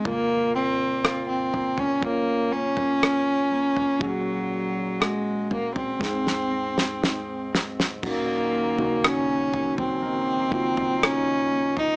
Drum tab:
CC |----------------|----------------|x---------------|
SD |----r-------r---|----r---oo-oo-oo|----r-------r---|
FT |o-----oo---o---o|o-----oo--------|o--o--oo---o---o|
BD |o-------o-------|o-------o-------|o---------o-----|